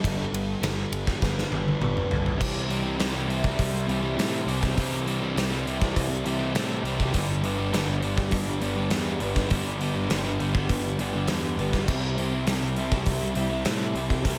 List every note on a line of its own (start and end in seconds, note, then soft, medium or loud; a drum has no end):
0.00 0.25 G1 loud
0.00 2.39 G2 medium
0.00 0.60 G2 medium
0.00 2.38 D3 medium
0.00 2.39 G3 medium
0.00 1.51 G3 medium
0.00 0.32 B3 medium
0.00 2.39 B3 medium
0.00 0.62 D4 medium
0.00 2.40 D4 medium
0.00 2.40 G4 medium
0.00 0.60 A4 medium
0.04 0.33 D3 medium
0.04 0.31 G3 medium
0.04 kick medium
0.04 ride medium
0.32 0.54 G1 medium
0.32 0.62 D3 medium
0.32 0.62 G3 medium
0.32 1.21 B3 medium
0.32 ride medium
0.61 0.83 G1 medium
0.61 1.79 G2 medium
0.61 1.52 D3 medium
0.61 1.49 G3 medium
0.61 2.09 A4 medium
0.61 snare loud
0.61 ride loud
0.91 1.13 G1 medium
0.91 1.50 D4 medium
0.91 ride medium
1.07 kick medium
1.07 snare soft
1.22 1.43 G1 medium
1.22 1.79 B3 medium
1.22 kick medium
1.22 snare medium
1.38 snare medium
1.51 1.73 G1 medium
1.51 1.80 D3 medium
1.51 1.81 G3 medium
1.51 2.40 D4 medium
1.51 high tom medium
1.68 high tom medium
1.80 2.02 G1 medium
1.80 2.38 G2 medium
1.80 2.10 D3 medium
1.80 2.07 G3 medium
1.80 2.40 B3 medium
1.80 mid tom medium
1.97 mid tom medium
2.09 2.33 G1 medium
2.09 2.38 D3 medium
2.09 2.37 G3 medium
2.09 2.40 A4 medium
2.09 floor tom loud
2.26 floor tom medium
2.38 2.97 C2 medium
2.38 2.96 C3 medium
2.38 2.67 E3 medium
2.38 2.68 G3 medium
2.38 2.69 C4 medium
2.38 2.70 G4 loud
2.38 kick medium
2.38 crash loud
2.67 2.97 C3 medium
2.67 2.97 E3 medium
2.67 2.85 G3 medium
2.67 2.84 C4 medium
2.67 2.82 G4 medium
2.67 open hi-hat medium
2.83 2.98 G3 medium
2.83 2.99 C4 medium
2.83 3.00 G4 medium
2.97 3.56 C2 medium
2.97 4.16 C3 loud
2.97 3.26 E3 medium
2.97 3.15 G3 loud
2.97 3.14 C4 loud
2.97 3.12 G4 loud
2.97 snare loud
2.97 open hi-hat medium
3.12 3.28 G3 medium
3.12 3.29 C4 medium
3.12 3.29 G4 medium
3.27 3.85 C3 medium
3.27 3.72 E3 medium
3.27 3.46 G3 medium
3.27 3.43 C4 medium
3.27 3.88 E4 medium
3.27 3.42 G4 medium
3.27 open hi-hat medium
3.43 3.88 G3 medium
3.43 3.88 C4 medium
3.43 3.90 G4 medium
3.43 kick medium
3.59 3.87 C2 medium
3.59 4.46 C4 medium
3.59 kick medium
3.59 open hi-hat medium
3.71 3.87 G3 medium
3.71 3.87 C4 medium
3.87 4.16 C2 medium
3.87 4.15 C3 medium
3.87 4.16 E3 medium
3.87 4.05 G3 medium
3.87 4.03 C4 medium
3.87 5.37 E4 medium
3.87 open hi-hat medium
3.91 4.02 G4 medium
4.02 4.18 G3 medium
4.02 4.19 C4 medium
4.02 4.19 G4 medium
4.17 4.45 A2 medium
4.17 4.75 C3 medium
4.17 4.45 E3 medium
4.17 4.47 G3 loud
4.17 4.47 C4 loud
4.17 4.49 G4 loud
4.17 snare loud
4.17 open hi-hat medium
4.45 4.75 C2 medium
4.45 4.74 C3 medium
4.45 4.77 E3 medium
4.45 4.64 G3 medium
4.45 4.62 C4 medium
4.45 4.61 G4 medium
4.45 open hi-hat medium
4.61 4.78 G3 medium
4.61 4.78 C4 medium
4.61 4.80 G4 medium
4.61 kick medium
4.61 snare soft
4.77 5.34 C2 medium
4.77 5.33 C3 medium
4.77 5.04 E3 medium
4.77 5.06 G3 medium
4.77 5.07 C4 medium
4.77 5.09 G4 medium
4.77 kick medium
4.77 open hi-hat medium
5.05 5.35 C3 medium
5.05 5.34 E3 medium
5.05 5.23 G3 medium
5.05 5.21 C4 medium
5.05 5.20 G4 loud
5.05 open hi-hat medium
5.20 5.35 G3 medium
5.20 5.35 C4 medium
5.20 5.37 G4 medium
5.34 5.93 C2 medium
5.34 5.80 C3 loud
5.34 5.63 E3 medium
5.34 5.52 G3 loud
5.34 5.50 C4 loud
5.34 5.49 G4 loud
5.34 snare loud
5.34 open hi-hat medium
5.50 5.65 G3 medium
5.50 5.65 C4 medium
5.50 5.67 G4 medium
5.64 6.23 C3 medium
5.64 6.09 E3 medium
5.64 5.82 G3 medium
5.64 5.80 C4 medium
5.64 6.24 E4 medium
5.64 5.79 G4 medium
5.64 open hi-hat medium
5.79 6.25 G3 medium
5.79 6.25 C4 medium
5.79 6.27 G4 medium
5.79 kick loud
5.79 snare soft
5.95 6.24 C2 medium
5.95 6.84 C4 medium
5.95 kick loud
5.95 open hi-hat medium
6.09 6.25 G3 medium
6.09 6.25 C4 medium
6.24 6.54 C2 medium
6.24 6.53 C3 medium
6.24 6.54 E3 medium
6.24 6.43 G3 medium
6.24 6.40 C4 medium
6.24 7.14 E4 medium
6.24 6.39 G4 loud
6.24 open hi-hat medium
6.39 6.56 C4 medium
6.39 6.57 G4 medium
6.43 6.55 G3 medium
6.54 6.83 A2 medium
6.54 7.12 C3 medium
6.54 6.82 E3 medium
6.54 6.85 G3 loud
6.54 6.85 C4 loud
6.54 6.86 G4 loud
6.54 snare loud
6.54 open hi-hat medium
6.83 7.12 C2 medium
6.83 7.12 C3 medium
6.83 7.12 E3 medium
6.83 7.01 G3 medium
6.83 6.98 C4 medium
6.83 6.98 G4 medium
6.83 open hi-hat medium
6.98 7.13 G3 medium
6.98 7.12 C4 medium
6.98 7.14 G4 medium
6.98 kick medium
7.12 7.71 G1 loud
7.12 7.71 G2 medium
7.12 7.72 D3 medium
7.12 7.42 G3 medium
7.12 7.43 B3 loud
7.12 7.44 D4 medium
7.12 7.45 G4 medium
7.12 kick medium
7.12 open hi-hat medium
7.42 7.72 G2 medium
7.42 7.58 D3 medium
7.42 7.59 G3 medium
7.42 7.59 B3 medium
7.42 7.58 D4 medium
7.42 7.56 G4 medium
7.42 open hi-hat medium
7.57 7.72 D3 medium
7.57 7.73 G3 medium
7.57 7.74 B3 medium
7.57 7.74 D4 medium
7.57 7.75 G4 medium
7.72 8.30 G1 medium
7.72 8.89 G2 medium
7.72 8.18 D3 medium
7.72 7.89 G3 medium
7.72 7.88 B3 loud
7.72 7.88 D4 loud
7.72 7.86 G4 loud
7.72 snare loud
7.72 open hi-hat medium
7.87 8.02 D3 medium
7.87 8.00 G3 medium
7.87 8.01 B3 medium
7.87 8.03 D4 medium
7.87 8.03 G4 medium
8.01 8.60 G2 medium
8.01 8.48 D3 medium
8.01 8.19 G3 medium
8.01 8.18 B3 medium
8.01 8.17 D4 medium
8.01 8.16 G4 medium
8.01 open hi-hat soft
8.17 8.60 G3 medium
8.17 8.60 B3 medium
8.17 8.61 D4 medium
8.17 8.63 G4 medium
8.17 kick medium
8.31 8.60 G1 loud
8.31 9.21 B3 medium
8.31 kick loud
8.31 open hi-hat medium
8.47 8.61 D3 medium
8.47 8.63 G3 medium
8.60 8.90 G1 medium
8.60 8.89 G2 medium
8.60 8.77 D3 medium
8.60 8.79 G3 medium
8.60 8.77 B3 medium
8.60 8.76 D4 medium
8.60 8.76 G4 medium
8.60 open hi-hat medium
8.76 8.90 D3 medium
8.76 8.90 G3 medium
8.76 8.90 B3 medium
8.76 8.91 D4 medium
8.76 8.92 G4 medium
8.89 9.20 E2 medium
8.89 9.47 G2 medium
8.89 9.48 D3 medium
8.89 9.18 G3 loud
8.89 9.19 B3 medium
8.89 9.20 D4 medium
8.89 9.22 G4 loud
8.89 snare loud
8.89 open hi-hat medium
9.19 9.50 G1 medium
9.19 9.48 G2 medium
9.19 9.36 D3 medium
9.19 9.36 G3 medium
9.19 9.34 B3 medium
9.19 9.34 D4 medium
9.19 9.33 G4 medium
9.19 open hi-hat medium
9.34 9.49 D3 soft
9.34 9.49 G3 medium
9.34 9.49 B3 medium
9.34 9.49 D4 medium
9.34 9.51 G4 medium
9.34 kick medium
9.34 snare soft
9.48 10.08 G1 loud
9.48 10.07 G2 medium
9.48 10.09 D3 medium
9.48 9.77 G3 medium
9.48 9.78 B3 medium
9.48 9.79 D4 loud
9.48 9.81 G4 loud
9.48 kick medium
9.48 open hi-hat medium
9.78 10.08 G2 medium
9.78 9.96 D3 medium
9.78 9.97 G3 medium
9.78 9.95 B3 medium
9.78 9.94 D4 medium
9.78 9.94 G4 medium
9.78 open hi-hat medium
9.83 9.94 G3 medium
9.94 10.09 D3 medium
9.94 10.10 G3 medium
9.94 10.10 B3 medium
9.94 10.11 D4 medium
9.94 10.12 G4 medium
10.09 10.67 G1 loud
10.09 10.54 G2 medium
10.09 10.54 D3 loud
10.09 10.27 G3 medium
10.09 10.26 B3 medium
10.09 10.24 D4 medium
10.09 10.24 G4 loud
10.09 snare loud
10.09 open hi-hat medium
10.24 10.38 D3 medium
10.24 10.38 G3 medium
10.24 10.38 B3 medium
10.24 10.39 D4 medium
10.24 10.41 G4 medium
10.38 10.96 G2 medium
10.38 10.84 D3 medium
10.38 10.57 G3 medium
10.38 10.55 B3 medium
10.38 10.54 D4 medium
10.38 10.53 G4 medium
10.38 open hi-hat medium
10.54 10.97 G3 medium
10.54 10.98 B3 medium
10.54 10.99 D4 medium
10.54 11.00 G4 medium
10.54 kick medium
10.68 10.98 G1 medium
10.68 11.56 B3 medium
10.68 kick loud
10.68 open hi-hat medium
10.84 10.98 D3 medium
10.84 10.99 G3 medium
10.98 11.27 G1 medium
10.98 11.27 G2 medium
10.98 11.14 D3 medium
10.98 11.16 G3 medium
10.98 11.14 B3 medium
10.98 11.13 D4 medium
10.98 11.12 G4 medium
10.98 open hi-hat medium
11.13 11.28 D3 medium
11.13 11.29 G3 medium
11.13 11.28 B3 medium
11.13 11.30 D4 medium
11.13 11.31 G4 medium
11.28 11.57 E2 loud
11.28 11.85 G2 medium
11.28 11.86 D3 loud
11.28 11.57 G3 medium
11.28 11.57 B3 medium
11.28 11.59 D4 medium
11.28 11.61 G4 medium
11.28 snare loud
11.28 open hi-hat medium
11.57 11.86 G1 medium
11.57 11.86 G2 medium
11.57 11.73 D3 medium
11.57 11.75 G3 medium
11.57 11.74 B3 medium
11.57 11.72 D4 medium
11.57 11.71 G4 medium
11.57 open hi-hat medium
11.72 11.86 D3 medium
11.72 11.87 G3 medium
11.72 11.87 B3 medium
11.72 11.86 D4 medium
11.72 11.90 G4 medium
11.72 kick medium
11.72 snare soft
11.86 12.44 C2 loud
11.86 12.46 C3 loud
11.86 12.16 G3 medium
11.86 12.17 C4 medium
11.86 12.17 E4 medium
11.86 12.19 G4 loud
11.86 kick medium
11.86 crash medium
12.16 12.46 C3 medium
12.16 12.46 G3 medium
12.16 12.34 C4 medium
12.16 12.33 E4 medium
12.16 12.31 G4 medium
12.16 open hi-hat medium
12.32 12.46 G3 medium
12.32 12.48 C4 medium
12.32 12.48 E4 medium
12.32 12.49 G4 medium
12.46 13.03 C2 loud
12.46 13.64 C3 loud
12.46 12.77 G3 medium
12.46 12.65 C4 loud
12.46 12.64 E4 medium
12.46 12.61 G4 loud
12.46 snare loud
12.46 open hi-hat medium
12.62 12.76 G3 medium
12.62 12.78 C4 medium
12.62 12.79 E4 medium
12.62 12.79 G4 medium
12.76 13.33 C3 medium
12.76 13.35 G3 medium
12.76 12.94 C4 medium
12.76 12.92 E4 medium
12.76 open hi-hat medium
12.80 12.91 G4 medium
12.92 13.35 C4 medium
12.92 13.36 E4 medium
12.92 13.38 G4 medium
12.92 kick medium
13.06 13.34 C2 medium
13.06 13.93 C4 medium
13.06 kick loud
13.06 open hi-hat medium
13.20 13.35 G3 medium
13.20 13.35 C4 medium
13.34 13.64 C2 medium
13.34 13.63 C3 medium
13.34 13.65 G3 medium
13.34 13.52 C4 medium
13.34 13.51 E4 medium
13.34 13.49 G4 medium
13.34 open hi-hat medium
13.50 13.65 G3 medium
13.50 13.65 C4 medium
13.50 13.65 E4 medium
13.50 13.67 G4 medium
13.64 13.93 A2 medium
13.64 14.22 C3 medium
13.64 13.94 G3 medium
13.64 13.95 C4 medium
13.64 13.96 E4 loud
13.64 13.97 G4 medium
13.64 snare loud
13.64 open hi-hat medium
13.94 14.23 C2 medium
13.94 14.23 C3 medium
13.94 14.24 G3 medium
13.94 14.10 C4 medium
13.94 14.09 E4 medium
13.94 14.07 G4 medium
13.94 open hi-hat medium
14.08 14.24 G3 medium
14.08 14.24 C4 medium
14.08 14.24 E4 medium
14.08 14.26 G4 medium
14.08 kick medium
14.23 14.38 C2 medium
14.23 14.38 C3 medium
14.23 14.38 G3 medium
14.23 14.38 C4 medium
14.23 14.38 E4 medium
14.23 14.38 G4 loud
14.23 kick medium
14.23 open hi-hat medium